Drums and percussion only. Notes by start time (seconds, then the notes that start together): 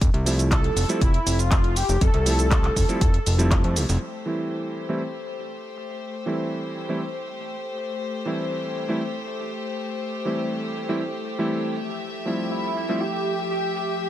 0.01 kick, closed hi-hat, shaker
0.14 closed hi-hat
0.26 open hi-hat, shaker
0.39 closed hi-hat, shaker
0.51 kick, clap, closed hi-hat, shaker
0.64 closed hi-hat
0.77 open hi-hat, shaker
0.89 closed hi-hat, shaker
1.01 kick, closed hi-hat, shaker
1.14 closed hi-hat
1.27 open hi-hat, shaker
1.39 closed hi-hat, shaker
1.51 kick, clap, closed hi-hat, shaker
1.64 closed hi-hat
1.76 open hi-hat, shaker
1.89 shaker
2.01 kick, closed hi-hat, shaker
2.14 closed hi-hat
2.26 open hi-hat, shaker
2.39 closed hi-hat, shaker
2.51 kick, clap, closed hi-hat, shaker
2.64 clap, closed hi-hat
2.76 kick, open hi-hat, shaker
2.89 closed hi-hat, shaker
3.01 kick, closed hi-hat, shaker
3.14 closed hi-hat
3.26 open hi-hat, shaker
3.39 closed hi-hat, shaker
3.51 kick, clap, closed hi-hat, shaker
3.64 closed hi-hat
3.76 open hi-hat, shaker
3.89 open hi-hat, shaker
4.02 shaker
4.27 shaker
4.39 shaker
4.52 shaker
4.77 shaker
4.89 shaker
5.02 shaker
5.27 shaker
5.39 shaker
5.52 shaker
5.77 shaker
5.89 shaker
6.02 shaker
6.27 shaker
6.40 shaker
6.77 shaker
7.27 shaker
7.39 shaker
7.52 shaker
7.77 shaker
7.89 shaker
8.02 shaker
8.27 shaker
8.39 shaker
8.76 shaker
9.27 shaker
9.39 shaker
9.52 shaker
9.77 shaker
9.89 shaker
10.02 shaker
10.27 shaker
10.39 shaker
10.52 shaker
10.77 shaker
10.89 shaker
11.01 shaker
11.26 shaker
11.39 shaker
11.51 shaker
11.76 shaker
11.89 shaker
12.02 shaker
12.26 shaker
12.39 shaker
12.52 shaker
12.76 shaker
12.89 shaker
13.01 shaker
13.26 shaker
13.39 shaker
13.52 shaker
13.76 shaker
13.89 shaker
14.02 shaker